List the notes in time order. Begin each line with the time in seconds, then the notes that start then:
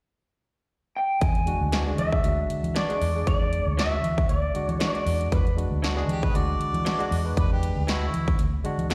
0.97 G5
1.21 E2 G#5, kick, closed hi-hat
1.35 closed hi-hat
1.46 G#3 D4 F#4, closed hi-hat
1.61 D2
1.72 E3 G#3 D4 F#4, snare, closed hi-hat
1.86 G#3 D4 G#4
1.98 E3 E5, closed hi-hat
2.13 kick
2.23 D2 G#3 D4 F#4, closed hi-hat
2.50 muted fingered electric bass stroke, closed hi-hat
2.64 E3, closed hi-hat
2.75 E3 G#3 D4 F#4 D5, snare, closed hi-hat
2.89 G#3 D4 G#4, closed hi-hat
3.01 E2, open hi-hat
3.15 G#3 D4 G#4
3.27 E2 D5, kick, closed hi-hat
3.53 closed hi-hat
3.66 D2 C#5
3.77 E3 G#3 D4 F#4 E5, snare, closed hi-hat
4.03 E3, closed hi-hat
4.18 kick, closed hi-hat
4.29 D2 D5, closed hi-hat
4.54 G#3 D4 F#4, muted fingered electric bass stroke, closed hi-hat
4.68 E3 C#5, closed hi-hat
4.79 E3 G#3 D4 F#4 D5, snare, closed hi-hat
4.95 closed hi-hat
5.06 E2, open hi-hat
5.21 closed hi-hat
5.32 E2 B4, kick, closed hi-hat
5.47 closed hi-hat
5.56 G#3 D4 F#4, closed hi-hat
5.71 D2
5.82 E3 G#3 D4 F#4, snare, closed hi-hat
5.96 G#3 D4 G#4, snare
6.08 E3 G4, closed hi-hat
6.23 B4, kick
6.33 D2 G#3 D4 F#4 D5, closed hi-hat
6.60 muted fingered electric bass stroke, closed hi-hat
6.74 E3, closed hi-hat
6.85 E3 G#3 D4 F#4, snare, closed hi-hat
6.99 G#3 D4 F#4, closed hi-hat
7.11 E2, open hi-hat
7.24 G#3 D4 B4
7.37 E2 B4, kick, closed hi-hat
7.53 G4
7.63 closed hi-hat
7.76 D2
7.87 E3 G#3 D4 E4 F#4, snare, closed hi-hat
8.14 E3, closed hi-hat
8.28 kick, closed hi-hat
8.39 D2, closed hi-hat
8.64 G#3 D4 F#4, muted fingered electric bass stroke, closed hi-hat
8.79 E3, closed hi-hat
8.90 C#2 E3 G#3 D4 F#4, snare, closed hi-hat